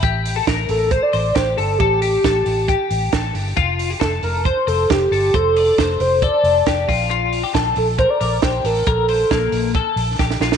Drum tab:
HH |x-o-x-o-x-o-x-o-|x-o-x-o-x-o-x-o-|x-o-x-o-x-o-x-o-|x-o-x-o-x-o-x-o-|
SD |----o-------o---|----o-------o---|----o-------o---|----o-------o---|
BD |o---o---o---o---|o---o---o---o---|o---o---o---o---|o---o---o---o-o-|

HH |x-o-x-o-x-o-x-o-|x-o-x-o-x-o-----|
SD |----o-------o---|----o-------oooo|
BD |----o---o---o---|o---o---o---o---|